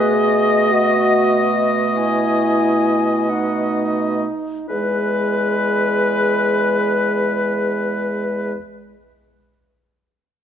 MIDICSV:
0, 0, Header, 1, 6, 480
1, 0, Start_track
1, 0, Key_signature, 4, "major"
1, 0, Tempo, 500000
1, 10016, End_track
2, 0, Start_track
2, 0, Title_t, "Flute"
2, 0, Program_c, 0, 73
2, 0, Note_on_c, 0, 71, 66
2, 134, Note_on_c, 0, 75, 68
2, 148, Note_off_c, 0, 71, 0
2, 1889, Note_on_c, 0, 80, 67
2, 1903, Note_off_c, 0, 75, 0
2, 3161, Note_on_c, 0, 78, 48
2, 3175, Note_off_c, 0, 80, 0
2, 3837, Note_off_c, 0, 78, 0
2, 4523, Note_on_c, 0, 71, 52
2, 8224, Note_off_c, 0, 71, 0
2, 10016, End_track
3, 0, Start_track
3, 0, Title_t, "Oboe"
3, 0, Program_c, 1, 68
3, 0, Note_on_c, 1, 75, 62
3, 4084, Note_off_c, 1, 75, 0
3, 4502, Note_on_c, 1, 71, 62
3, 8203, Note_off_c, 1, 71, 0
3, 10016, End_track
4, 0, Start_track
4, 0, Title_t, "French horn"
4, 0, Program_c, 2, 60
4, 0, Note_on_c, 2, 68, 78
4, 692, Note_on_c, 2, 66, 80
4, 706, Note_off_c, 2, 68, 0
4, 1571, Note_off_c, 2, 66, 0
4, 1884, Note_on_c, 2, 64, 72
4, 3161, Note_on_c, 2, 63, 62
4, 3176, Note_off_c, 2, 64, 0
4, 4499, Note_off_c, 2, 63, 0
4, 4505, Note_on_c, 2, 68, 60
4, 8206, Note_off_c, 2, 68, 0
4, 10016, End_track
5, 0, Start_track
5, 0, Title_t, "Clarinet"
5, 0, Program_c, 3, 71
5, 0, Note_on_c, 3, 57, 52
5, 4085, Note_off_c, 3, 57, 0
5, 4501, Note_on_c, 3, 56, 50
5, 8202, Note_off_c, 3, 56, 0
5, 10016, End_track
6, 0, Start_track
6, 0, Title_t, "Bassoon"
6, 0, Program_c, 4, 70
6, 0, Note_on_c, 4, 47, 53
6, 4080, Note_off_c, 4, 47, 0
6, 4505, Note_on_c, 4, 40, 47
6, 8206, Note_off_c, 4, 40, 0
6, 10016, End_track
0, 0, End_of_file